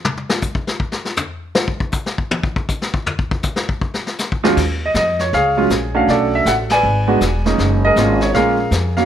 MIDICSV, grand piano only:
0, 0, Header, 1, 2, 480
1, 0, Start_track
1, 0, Key_signature, -6, "minor"
1, 0, Tempo, 377121
1, 69, Time_signature, 4, 2, 24, 8
1, 11521, End_track
2, 0, Start_track
2, 0, Title_t, "Grand piano"
2, 0, Program_c, 0, 0
2, 5643, Note_on_c, 0, 56, 65
2, 5647, Note_on_c, 0, 39, 80
2, 5647, Note_on_c, 0, 65, 87
2, 5648, Note_on_c, 0, 54, 64
2, 5648, Note_on_c, 0, 61, 69
2, 5803, Note_off_c, 0, 56, 0
2, 5805, Note_off_c, 0, 39, 0
2, 5805, Note_off_c, 0, 54, 0
2, 5805, Note_off_c, 0, 61, 0
2, 5805, Note_off_c, 0, 65, 0
2, 6180, Note_on_c, 0, 75, 68
2, 6243, Note_off_c, 0, 75, 0
2, 6322, Note_on_c, 0, 75, 73
2, 6599, Note_off_c, 0, 75, 0
2, 6625, Note_on_c, 0, 73, 65
2, 6778, Note_off_c, 0, 73, 0
2, 6797, Note_on_c, 0, 77, 89
2, 6798, Note_on_c, 0, 73, 65
2, 6799, Note_on_c, 0, 68, 64
2, 7091, Note_on_c, 0, 56, 61
2, 7092, Note_on_c, 0, 54, 64
2, 7098, Note_on_c, 0, 61, 55
2, 7101, Note_on_c, 0, 65, 74
2, 7238, Note_off_c, 0, 77, 0
2, 7247, Note_off_c, 0, 56, 0
2, 7248, Note_off_c, 0, 54, 0
2, 7251, Note_off_c, 0, 61, 0
2, 7252, Note_off_c, 0, 65, 0
2, 7567, Note_on_c, 0, 61, 59
2, 7568, Note_on_c, 0, 57, 68
2, 7572, Note_on_c, 0, 62, 57
2, 7576, Note_on_c, 0, 66, 72
2, 7592, Note_on_c, 0, 77, 75
2, 7701, Note_off_c, 0, 73, 0
2, 7702, Note_off_c, 0, 68, 0
2, 7757, Note_off_c, 0, 66, 0
2, 7761, Note_off_c, 0, 77, 0
2, 7764, Note_on_c, 0, 74, 77
2, 7776, Note_on_c, 0, 66, 61
2, 7781, Note_on_c, 0, 69, 62
2, 8070, Note_off_c, 0, 74, 0
2, 8085, Note_on_c, 0, 76, 82
2, 8189, Note_off_c, 0, 57, 0
2, 8189, Note_off_c, 0, 61, 0
2, 8191, Note_off_c, 0, 62, 0
2, 8238, Note_on_c, 0, 78, 86
2, 8247, Note_off_c, 0, 76, 0
2, 8306, Note_off_c, 0, 78, 0
2, 8547, Note_on_c, 0, 80, 97
2, 8568, Note_on_c, 0, 74, 63
2, 8574, Note_on_c, 0, 71, 59
2, 8671, Note_off_c, 0, 66, 0
2, 8674, Note_off_c, 0, 69, 0
2, 9006, Note_on_c, 0, 56, 71
2, 9008, Note_on_c, 0, 59, 62
2, 9013, Note_on_c, 0, 62, 59
2, 9019, Note_on_c, 0, 66, 76
2, 9166, Note_off_c, 0, 56, 0
2, 9167, Note_off_c, 0, 59, 0
2, 9170, Note_off_c, 0, 62, 0
2, 9173, Note_off_c, 0, 66, 0
2, 9450, Note_off_c, 0, 80, 0
2, 9461, Note_off_c, 0, 74, 0
2, 9464, Note_off_c, 0, 71, 0
2, 9487, Note_on_c, 0, 56, 57
2, 9494, Note_on_c, 0, 58, 52
2, 9494, Note_on_c, 0, 61, 53
2, 9504, Note_on_c, 0, 63, 60
2, 9986, Note_on_c, 0, 75, 96
2, 10005, Note_on_c, 0, 70, 60
2, 10011, Note_on_c, 0, 68, 58
2, 10110, Note_off_c, 0, 56, 0
2, 10114, Note_off_c, 0, 58, 0
2, 10114, Note_off_c, 0, 61, 0
2, 10119, Note_off_c, 0, 63, 0
2, 10148, Note_on_c, 0, 58, 54
2, 10153, Note_on_c, 0, 56, 55
2, 10153, Note_on_c, 0, 61, 63
2, 10162, Note_on_c, 0, 65, 66
2, 10424, Note_off_c, 0, 58, 0
2, 10427, Note_off_c, 0, 56, 0
2, 10427, Note_off_c, 0, 61, 0
2, 10431, Note_off_c, 0, 65, 0
2, 10462, Note_on_c, 0, 73, 69
2, 10475, Note_off_c, 0, 75, 0
2, 10620, Note_off_c, 0, 73, 0
2, 10623, Note_on_c, 0, 77, 91
2, 10631, Note_off_c, 0, 70, 0
2, 10632, Note_on_c, 0, 56, 67
2, 10636, Note_off_c, 0, 68, 0
2, 10636, Note_on_c, 0, 61, 59
2, 10637, Note_on_c, 0, 58, 62
2, 10639, Note_on_c, 0, 65, 67
2, 10650, Note_on_c, 0, 70, 63
2, 10655, Note_on_c, 0, 68, 67
2, 10906, Note_off_c, 0, 56, 0
2, 10908, Note_off_c, 0, 61, 0
2, 10909, Note_off_c, 0, 58, 0
2, 10910, Note_off_c, 0, 65, 0
2, 11072, Note_off_c, 0, 77, 0
2, 11414, Note_on_c, 0, 77, 77
2, 11419, Note_on_c, 0, 54, 63
2, 11419, Note_on_c, 0, 58, 62
2, 11427, Note_on_c, 0, 61, 58
2, 11478, Note_off_c, 0, 77, 0
2, 11521, Note_off_c, 0, 54, 0
2, 11521, Note_off_c, 0, 58, 0
2, 11521, Note_off_c, 0, 61, 0
2, 11521, Note_off_c, 0, 68, 0
2, 11521, Note_off_c, 0, 70, 0
2, 11521, End_track
0, 0, End_of_file